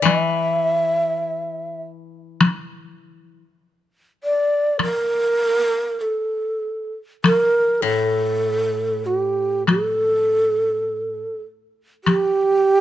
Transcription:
0, 0, Header, 1, 4, 480
1, 0, Start_track
1, 0, Tempo, 1185771
1, 23, Time_signature, 2, 2, 24, 8
1, 1943, Tempo, 1221996
1, 3383, Tempo, 1195219
1, 5126, End_track
2, 0, Start_track
2, 0, Title_t, "Shakuhachi"
2, 0, Program_c, 0, 77
2, 24, Note_on_c, 0, 76, 87
2, 740, Note_off_c, 0, 76, 0
2, 1715, Note_on_c, 0, 74, 89
2, 1933, Note_off_c, 0, 74, 0
2, 1951, Note_on_c, 0, 70, 99
2, 2418, Note_on_c, 0, 69, 68
2, 2424, Note_off_c, 0, 70, 0
2, 2780, Note_off_c, 0, 69, 0
2, 2904, Note_on_c, 0, 70, 89
2, 3130, Note_off_c, 0, 70, 0
2, 3140, Note_on_c, 0, 69, 81
2, 3621, Note_on_c, 0, 66, 66
2, 3627, Note_off_c, 0, 69, 0
2, 3669, Note_off_c, 0, 66, 0
2, 3669, Note_on_c, 0, 67, 66
2, 3865, Note_off_c, 0, 67, 0
2, 3872, Note_on_c, 0, 69, 84
2, 4571, Note_off_c, 0, 69, 0
2, 4820, Note_on_c, 0, 67, 105
2, 5126, Note_off_c, 0, 67, 0
2, 5126, End_track
3, 0, Start_track
3, 0, Title_t, "Koto"
3, 0, Program_c, 1, 107
3, 9, Note_on_c, 1, 52, 46
3, 1378, Note_off_c, 1, 52, 0
3, 3130, Note_on_c, 1, 45, 45
3, 4482, Note_off_c, 1, 45, 0
3, 5126, End_track
4, 0, Start_track
4, 0, Title_t, "Taiko and cinematic ensemble drums"
4, 22, Note_on_c, 9, 37, 48
4, 22, Note_on_c, 9, 48, 52
4, 62, Note_off_c, 9, 37, 0
4, 62, Note_off_c, 9, 48, 0
4, 974, Note_on_c, 9, 37, 58
4, 974, Note_on_c, 9, 48, 60
4, 1014, Note_off_c, 9, 37, 0
4, 1014, Note_off_c, 9, 48, 0
4, 1941, Note_on_c, 9, 37, 50
4, 1941, Note_on_c, 9, 48, 49
4, 1980, Note_off_c, 9, 37, 0
4, 1980, Note_off_c, 9, 48, 0
4, 2902, Note_on_c, 9, 37, 57
4, 2902, Note_on_c, 9, 48, 53
4, 2941, Note_off_c, 9, 37, 0
4, 2941, Note_off_c, 9, 48, 0
4, 3870, Note_on_c, 9, 37, 47
4, 3870, Note_on_c, 9, 48, 48
4, 3910, Note_off_c, 9, 37, 0
4, 3910, Note_off_c, 9, 48, 0
4, 4829, Note_on_c, 9, 37, 45
4, 4829, Note_on_c, 9, 48, 47
4, 4869, Note_off_c, 9, 37, 0
4, 4869, Note_off_c, 9, 48, 0
4, 5126, End_track
0, 0, End_of_file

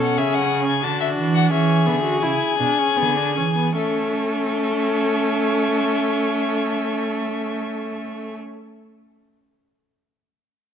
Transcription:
0, 0, Header, 1, 5, 480
1, 0, Start_track
1, 0, Key_signature, 3, "major"
1, 0, Tempo, 667408
1, 1092, Time_signature, 3, 2, 24, 8
1, 1092, Tempo, 731707
1, 2052, Tempo, 815217
1, 6619, End_track
2, 0, Start_track
2, 0, Title_t, "Violin"
2, 0, Program_c, 0, 40
2, 14, Note_on_c, 0, 78, 79
2, 126, Note_on_c, 0, 76, 85
2, 136, Note_off_c, 0, 78, 0
2, 244, Note_on_c, 0, 78, 81
2, 255, Note_off_c, 0, 76, 0
2, 475, Note_off_c, 0, 78, 0
2, 480, Note_on_c, 0, 80, 73
2, 599, Note_on_c, 0, 81, 83
2, 609, Note_off_c, 0, 80, 0
2, 718, Note_off_c, 0, 81, 0
2, 723, Note_on_c, 0, 76, 78
2, 780, Note_off_c, 0, 76, 0
2, 967, Note_on_c, 0, 78, 81
2, 1085, Note_off_c, 0, 78, 0
2, 1089, Note_on_c, 0, 76, 66
2, 1550, Note_off_c, 0, 76, 0
2, 1555, Note_on_c, 0, 80, 74
2, 2499, Note_off_c, 0, 80, 0
2, 2519, Note_on_c, 0, 76, 56
2, 5216, Note_off_c, 0, 76, 0
2, 6619, End_track
3, 0, Start_track
3, 0, Title_t, "Violin"
3, 0, Program_c, 1, 40
3, 0, Note_on_c, 1, 69, 74
3, 127, Note_on_c, 1, 68, 65
3, 137, Note_off_c, 1, 69, 0
3, 600, Note_on_c, 1, 66, 71
3, 610, Note_off_c, 1, 68, 0
3, 1085, Note_off_c, 1, 66, 0
3, 1089, Note_on_c, 1, 68, 80
3, 2495, Note_off_c, 1, 68, 0
3, 2517, Note_on_c, 1, 69, 65
3, 5214, Note_off_c, 1, 69, 0
3, 6619, End_track
4, 0, Start_track
4, 0, Title_t, "Viola"
4, 0, Program_c, 2, 41
4, 0, Note_on_c, 2, 61, 73
4, 580, Note_off_c, 2, 61, 0
4, 598, Note_on_c, 2, 62, 72
4, 1091, Note_on_c, 2, 61, 78
4, 1101, Note_off_c, 2, 62, 0
4, 1319, Note_on_c, 2, 59, 68
4, 1329, Note_off_c, 2, 61, 0
4, 1432, Note_off_c, 2, 59, 0
4, 1436, Note_on_c, 2, 66, 77
4, 1558, Note_on_c, 2, 64, 69
4, 1568, Note_off_c, 2, 66, 0
4, 1797, Note_off_c, 2, 64, 0
4, 1801, Note_on_c, 2, 62, 72
4, 1924, Note_on_c, 2, 61, 66
4, 1934, Note_off_c, 2, 62, 0
4, 2045, Note_on_c, 2, 59, 70
4, 2054, Note_off_c, 2, 61, 0
4, 2162, Note_on_c, 2, 62, 61
4, 2171, Note_off_c, 2, 59, 0
4, 2272, Note_off_c, 2, 62, 0
4, 2276, Note_on_c, 2, 61, 64
4, 2323, Note_off_c, 2, 61, 0
4, 2395, Note_on_c, 2, 59, 62
4, 2515, Note_off_c, 2, 59, 0
4, 2517, Note_on_c, 2, 61, 77
4, 5214, Note_off_c, 2, 61, 0
4, 6619, End_track
5, 0, Start_track
5, 0, Title_t, "Cello"
5, 0, Program_c, 3, 42
5, 0, Note_on_c, 3, 47, 66
5, 131, Note_on_c, 3, 49, 76
5, 142, Note_off_c, 3, 47, 0
5, 604, Note_on_c, 3, 50, 68
5, 614, Note_off_c, 3, 49, 0
5, 841, Note_off_c, 3, 50, 0
5, 845, Note_on_c, 3, 52, 77
5, 1088, Note_off_c, 3, 52, 0
5, 1091, Note_on_c, 3, 52, 80
5, 1322, Note_on_c, 3, 50, 67
5, 1332, Note_off_c, 3, 52, 0
5, 1556, Note_off_c, 3, 50, 0
5, 1560, Note_on_c, 3, 49, 61
5, 1612, Note_off_c, 3, 49, 0
5, 1800, Note_on_c, 3, 47, 66
5, 1853, Note_off_c, 3, 47, 0
5, 2048, Note_on_c, 3, 50, 69
5, 2279, Note_on_c, 3, 52, 66
5, 2288, Note_off_c, 3, 50, 0
5, 2512, Note_off_c, 3, 52, 0
5, 2515, Note_on_c, 3, 57, 69
5, 5212, Note_off_c, 3, 57, 0
5, 6619, End_track
0, 0, End_of_file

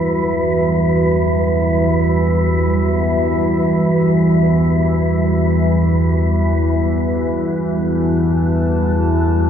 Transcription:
0, 0, Header, 1, 4, 480
1, 0, Start_track
1, 0, Key_signature, 1, "minor"
1, 0, Tempo, 500000
1, 9119, End_track
2, 0, Start_track
2, 0, Title_t, "Analog synth pad"
2, 0, Program_c, 0, 89
2, 0, Note_on_c, 0, 55, 76
2, 0, Note_on_c, 0, 66, 77
2, 0, Note_on_c, 0, 76, 77
2, 7472, Note_on_c, 0, 81, 81
2, 7491, Note_off_c, 0, 76, 0
2, 9119, Note_off_c, 0, 55, 0
2, 9119, Note_off_c, 0, 66, 0
2, 9119, Note_off_c, 0, 81, 0
2, 9119, End_track
3, 0, Start_track
3, 0, Title_t, "Synth texture"
3, 0, Program_c, 1, 99
3, 0, Note_on_c, 1, 71, 74
3, 6443, Note_on_c, 1, 66, 73
3, 6452, Note_off_c, 1, 71, 0
3, 9119, Note_off_c, 1, 66, 0
3, 9119, End_track
4, 0, Start_track
4, 0, Title_t, "Synth drone"
4, 0, Program_c, 2, 95
4, 0, Note_on_c, 2, 40, 66
4, 0, Note_on_c, 2, 52, 61
4, 9119, Note_off_c, 2, 40, 0
4, 9119, Note_off_c, 2, 52, 0
4, 9119, End_track
0, 0, End_of_file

